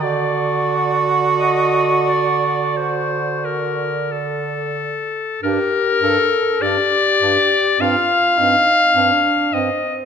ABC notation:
X:1
M:4/4
L:1/8
Q:1/4=50
K:Gm
V:1 name="Clarinet"
d2 e d c B A2 | B2 d2 f3 e |]
V:2 name="Tenor saxophone"
^F6 z2 | G A G2 F E D C |]
V:3 name="Alto saxophone"
d6- d z | D D D D C C C C |]
V:4 name="Bass clarinet" clef=bass
D,6- D, z | G,, G,, G,, G,, G,, G,, G,, G,, |]